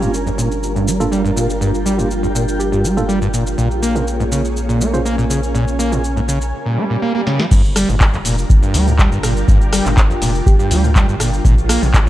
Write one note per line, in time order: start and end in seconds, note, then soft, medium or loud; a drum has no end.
0.00 3.56 G1 medium
0.00 0.08 G2 medium
0.00 3.54 G3 medium
0.00 0.10 A#3 medium
0.00 3.54 D4 medium
0.00 0.10 D4 medium
0.00 4.83 F4 medium
0.00 6.49 F4 medium
0.00 0.10 F4 medium
0.00 0.10 G4 medium
0.00 3.54 A#4 medium
0.00 6.53 A#4 medium
0.00 shaker soft
0.14 shaker soft
0.26 0.30 F2 medium
0.26 shaker soft
0.33 3.58 G5 medium
0.38 0.49 A#2 medium
0.38 shaker medium
0.52 shaker soft
0.63 shaker soft
0.76 0.89 G2 medium
0.76 shaker soft
0.87 1.02 G3 medium
0.87 shaker medium
1.00 1.07 G2 medium
1.00 1.14 A#3 medium
1.00 1.14 D4 medium
1.00 1.14 F4 medium
1.00 1.14 A4 medium
1.00 shaker soft
1.12 1.22 G3 loud
1.12 shaker soft
1.25 1.31 G2 loud
1.25 shaker soft
1.36 1.47 A#2 medium
1.36 shaker medium
1.50 shaker soft
1.61 1.72 G2 loud
1.61 shaker soft
1.74 shaker soft
1.86 2.00 G3 loud
1.86 shaker medium
1.98 2.05 G2 medium
1.98 2.07 A#3 medium
1.98 2.07 D4 medium
1.98 2.07 F4 medium
1.98 2.07 G4 medium
1.98 shaker soft
2.11 shaker soft
2.23 2.27 F2 medium
2.23 shaker soft
2.35 2.45 A#2 medium
2.35 shaker medium
2.48 shaker soft
2.59 2.68 G4 medium
2.59 shaker soft
2.72 2.86 G2 medium
2.72 2.80 G4 medium
2.72 shaker soft
2.84 2.98 G3 medium
2.84 shaker medium
2.97 3.03 G2 medium
2.97 3.10 A#3 medium
2.97 3.10 D4 medium
2.97 3.10 F4 medium
2.97 3.10 A4 loud
2.97 shaker soft
3.09 3.19 G3 loud
3.09 shaker soft
3.21 3.28 G2 loud
3.21 shaker soft
3.33 3.44 A#2 medium
3.33 shaker medium
3.47 shaker soft
3.58 6.53 A#1 medium
3.58 3.68 A#2 loud
3.58 6.50 A#3 medium
3.58 6.53 C#4 medium
3.58 6.50 G#4 medium
3.58 6.50 C#5 medium
3.58 shaker soft
3.71 shaker soft
3.82 3.97 A#3 loud
3.82 shaker medium
3.95 4.02 A#2 medium
3.95 4.04 C#4 medium
3.95 4.04 F4 medium
3.95 4.04 G#4 medium
3.95 4.04 A#4 medium
3.95 shaker soft
4.07 shaker soft
4.14 6.53 G#5 medium
4.20 4.24 G#2 medium
4.20 shaker soft
4.32 4.42 C#3 medium
4.32 shaker medium
4.45 shaker soft
4.57 shaker soft
4.69 4.82 A#2 medium
4.69 shaker soft
4.81 4.95 A#3 medium
4.81 shaker medium
4.94 5.00 A#2 medium
4.94 5.07 C#4 medium
4.94 5.07 F4 medium
4.94 5.07 G#4 medium
4.94 5.07 C5 medium
4.94 shaker soft
5.05 5.16 A#3 loud
5.05 shaker soft
5.18 5.25 A#2 loud
5.18 shaker soft
5.30 5.41 C#3 medium
5.30 shaker medium
5.43 shaker soft
5.55 5.65 A#2 loud
5.55 shaker soft
5.68 shaker soft
5.79 5.93 A#3 loud
5.79 shaker medium
5.92 5.98 A#2 medium
5.92 6.00 C#4 medium
5.92 6.00 F4 medium
5.92 6.00 G#4 medium
5.92 6.00 A#4 medium
5.92 shaker soft
6.04 shaker soft
6.16 6.20 G#2 medium
6.16 shaker soft
6.28 6.39 C#3 medium
6.28 shaker medium
6.42 shaker soft
6.53 swell medium
6.66 6.79 A#2 medium
6.77 6.85 A#3 medium
6.90 6.97 A#2 medium
7.02 7.13 A#3 loud
7.15 7.21 A#3 loud
7.27 7.41 C#3 loud
7.27 snare medium
7.39 7.46 F3 loud
7.39 snare medium
7.51 7.84 G1 loud
7.51 7.62 G2 loud
7.51 11.41 G3 medium
7.51 11.41 D4 medium
7.51 12.09 F4 medium
7.51 11.41 A#4 medium
7.51 kick loud
7.51 crash loud
7.51 shaker soft
7.65 shaker soft
7.76 7.90 G3 loud
7.76 11.45 G5 medium
7.76 cross-stick medium
7.76 open hi-hat loud
7.76 shaker medium
7.89 8.21 G1 medium
7.89 7.95 G2 medium
7.89 shaker soft
8.01 kick loud
8.01 clap loud
8.01 shaker soft
8.13 8.17 F2 medium
8.13 clap soft
8.13 shaker soft
8.25 8.44 F1 loud
8.25 8.36 A#2 medium
8.25 open hi-hat loud
8.25 shaker medium
8.38 shaker soft
8.50 8.60 G1 loud
8.50 kick loud
8.50 shaker soft
8.62 8.76 G2 medium
8.62 shaker soft
8.74 9.07 D2 medium
8.74 8.89 G3 medium
8.74 open hi-hat loud
8.74 shaker medium
8.87 8.94 G2 medium
8.87 shaker soft
8.99 9.09 G3 loud
8.99 kick loud
8.99 clap loud
8.99 shaker soft
9.12 9.44 G1 medium
9.12 9.18 G2 loud
9.12 shaker soft
9.23 9.34 A#2 medium
9.23 cross-stick medium
9.23 open hi-hat loud
9.23 shaker medium
9.37 shaker soft
9.48 9.81 G1 loud
9.48 9.59 G2 loud
9.48 kick loud
9.48 shaker soft
9.61 shaker soft
9.73 9.87 G3 loud
9.73 cross-stick medium
9.73 open hi-hat loud
9.73 shaker medium
9.85 10.18 G1 medium
9.85 9.92 G2 medium
9.85 clap soft
9.85 shaker soft
9.97 kick loud
9.97 clap loud
9.97 shaker soft
10.10 10.14 F2 medium
10.10 shaker soft
10.22 10.41 F1 loud
10.22 10.32 A#2 medium
10.22 open hi-hat loud
10.22 shaker medium
10.35 shaker soft
10.46 10.56 G1 loud
10.46 10.55 G4 medium
10.46 kick loud
10.46 shaker soft
10.59 10.72 G2 medium
10.59 10.67 G4 medium
10.59 shaker soft
10.71 11.04 D2 loud
10.71 10.85 G3 medium
10.71 open hi-hat loud
10.71 shaker medium
10.84 10.90 G2 medium
10.84 shaker soft
10.95 11.06 G3 loud
10.95 kick loud
10.95 clap loud
10.95 shaker soft
11.08 11.41 G1 medium
11.08 11.15 G2 loud
11.08 shaker soft
11.20 11.31 A#2 medium
11.20 cross-stick medium
11.20 open hi-hat loud
11.20 shaker medium
11.33 shaker soft
11.45 11.78 A#1 loud
11.45 11.55 A#2 loud
11.45 12.09 A#3 medium
11.45 12.09 C#4 medium
11.45 12.09 G#4 medium
11.45 12.09 C#5 medium
11.45 kick loud
11.45 shaker soft
11.58 shaker soft
11.69 11.83 A#3 loud
11.69 cross-stick medium
11.69 open hi-hat loud
11.69 shaker medium
11.82 12.09 A#1 medium
11.82 11.89 A#2 medium
11.82 shaker soft
11.94 kick loud
11.94 clap loud
11.94 shaker soft